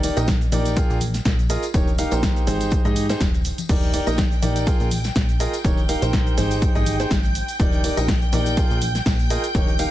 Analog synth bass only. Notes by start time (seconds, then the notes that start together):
Already playing: D#1
0.17 A#1
0.52 A#1
0.90 A#1
1.25 A#1
1.74 D#1
2.12 A#1
2.47 G#1
2.85 G#2
3.21 D#1
3.69 D#1
4.07 A#1
4.43 A#1
4.80 A#1
5.16 A#1
5.65 D#1
6.02 A#1
6.38 G#1
6.75 G#1
7.11 G#1
7.60 D#1
7.97 A#1
8.33 A#1
8.71 A#1
9.06 A#1
9.55 D#1